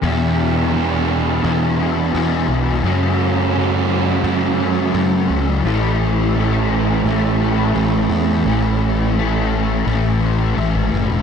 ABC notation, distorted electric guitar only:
X:1
M:4/4
L:1/8
Q:1/4=86
K:A
V:1 name="Distorted electric guitar" clef=bass
[E,,B,,E,]2 [E,,B,,E,]2 [E,,B,,E,] [B,,E,] [E,,B,,E,]2 | [F,,C,F,]2 [F,,C,F,]2 [F,,C,F,] [C,F,] [F,,C,F,]2 | [A,,E,A,]2 [A,,E,A,]2 [A,,E,A,] [E,A,] [A,,E,A,]2 | [A,,E,A,]2 [A,,E,A,]2 [A,,E,A,] [E,A,] [A,,E,A,]2 |]